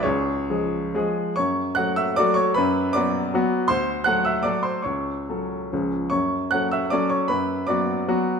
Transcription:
<<
  \new Staff \with { instrumentName = "Grand piano" } { \time 3/4 \key fis \minor \tempo 4 = 152 <gis' cis''>2~ <gis' cis''>8 r8 | <cis'' cis'''>4 <fis'' fis'''>8 <e'' e'''>8 <d'' d'''>8 <cis'' cis'''>8 | <b' b''>4 <d'' d'''>4. r8 | <c'' c'''>4 <fis'' fis'''>8 <e'' e'''>8 <d'' d'''>8 <c'' c'''>8 |
<cis'' cis'''>2~ <cis'' cis'''>8 r8 | <cis'' cis'''>4 <fis'' fis'''>8 <e'' e'''>8 <d'' d'''>8 <cis'' cis'''>8 | <b' b''>4 <d'' d'''>4. r8 | }
  \new Staff \with { instrumentName = "Grand piano" } { \time 3/4 \key fis \minor cis,4 <eis gis gis'>4 <eis gis gis'>4 | fis,4 <fis a fis'>4 <fis a fis'>4 | fis,4 <fis b fis'>4 <fis b fis'>4 | d,4 <fis a a'>4 <fis a a'>4 |
cis,4 <fis cis' a'>4 <cis, eis cis' gis'>4 | fis,4 <fis cis' a'>4 <fis cis' a'>4 | fis,4 <fis b fis'>4 <fis b fis'>4 | }
>>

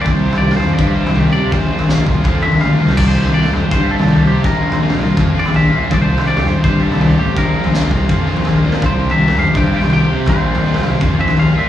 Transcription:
<<
  \new Staff \with { instrumentName = "Clean electric guitar" } { \time 4/4 \key bes \lydian \tempo 4 = 164 d''16 c''8. d''8 c''8 d''8 c''4 d''8 | c''4 r4. e''8 f''4 | d''16 c''8. d''8 c''8 c''8 a'4 g'8 | bes'4 r4. d''8 e''4 |
d''16 c''8. d''8 c''8 c''8 a'4 g'8 | bes'4 r2. | c''8. e''8. f''8 g''8 g''8 g''4 | c''2 r8 e''8 f''8 e''8 | }
  \new Staff \with { instrumentName = "Overdriven electric guitar" } { \time 4/4 \key bes \lydian <c f c' f' g'>8 <c' f' g'>8 <c f c' f' g'>8 <c' f' g'>8 <f c' f' g'>8 <c f c' f' g'>8 <f c' f' g'>8 <c' f' g'>8 | <bes, f bes c' f'>8 <bes c' f'>8 <bes, f bes c' f'>8 <bes c' f'>8 <f bes c' f'>8 <bes, f bes c' f'>8 <f bes c' f'>8 <bes c' f'>8 | <c f c' f' g'>8 <c' f' g'>8 <c f c' f' g'>8 <c' f' g'>8 <f c' f' g'>8 <c f c' f' g'>8 <f c' f' g'>8 <c' f' g'>8 | <bes, f bes c' f'>8 <bes c' f'>8 <bes, f bes c' f'>8 <bes c' f'>8 <f bes c' f'>8 <bes, f bes c' f'>8 <f bes c' f'>8 <bes c' f'>8 |
<c f c' f' g'>8 <c' f' g'>8 <c f c' f' g'>8 <c' f' g'>8 <f c' f' g'>8 <c f c' f' g'>8 <f c' f' g'>8 <c' f' g'>8 | <bes, f bes c' f'>8 <bes c' f'>8 <bes, f bes c' f'>8 <bes c' f'>8 <f bes c' f'>8 <bes, f bes c' f'>8 <f bes c' f'>8 <bes c' f'>8 | <c f c' f' g'>8 <c' f' g'>8 <c f c' f' g'>8 <c' f' g'>8 <f c' f' g'>8 <c f c' f' g'>8 <f c' f' g'>8 <c' f' g'>8 | <bes, f bes c' f'>8 <bes c' f'>8 <bes, f bes c' f'>8 <bes c' f'>8 <f bes c' f'>8 <bes, f bes c' f'>8 <f bes c' f'>8 <bes c' f'>8 | }
  \new Staff \with { instrumentName = "Picked electric bass" } { \clef bass \time 4/4 \key bes \lydian c,8. c,8. f,16 r16 g,8. c,8. c8 | bes,,8. bes,,8. c,16 r16 f,8. bes,,16 d,8 c,8 | c,8. c,8. f,16 r16 g,8. c,8. c8 | bes,,8. bes,,8. c,16 r16 f,8. bes,,8. bes,,8 |
c,8. c,8. f,16 r16 g,8. c,8. a,,8 | bes,,8. bes,,8. c,16 r16 f,8. bes,,8. bes,8 | c,8. c,8. f,16 r16 g,8. c,8. c8 | bes,,8. bes,,8. c,16 r16 f,8. bes,,8. bes,8 | }
  \new DrumStaff \with { instrumentName = "Drums" } \drummode { \time 4/4 <bd tomfh>8. tomfh16 r16 toml16 tomfh8 <bd tomfh>8. tomfh16 tomfh4 | <bd tomfh>8. tomfh16 sn16 <tomfh toml>16 <bd tomfh>8 <bd tomfh>8 tomfh16 tomfh16 tomfh16 tomfh8 toml16 | <cymc bd tomfh>8. tomfh16 r16 toml16 tomfh8 <bd tomfh>8. tomfh16 tomfh4 | <bd tomfh>8. tomfh16 r16 toml16 tomfh8 <bd tomfh>8. tomfh16 tomfh4 |
<bd tomfh>8. tomfh16 r16 toml16 tomfh8 <bd tomfh>8. tomfh16 tomfh4 | <bd tomfh>8. tomfh16 sn16 <tomfh toml>16 <bd tomfh>8 <bd tomfh>8 tomfh16 tomfh16 tomfh16 tomfh8 toml16 | <bd tomfh>8. tomfh16 r16 toml16 tomfh8 <bd tomfh>8. tomfh16 tomfh4 | <bd tomfh>8. tomfh16 r16 toml16 tomfh8 <bd tomfh>8. tomfh16 tomfh4 | }
>>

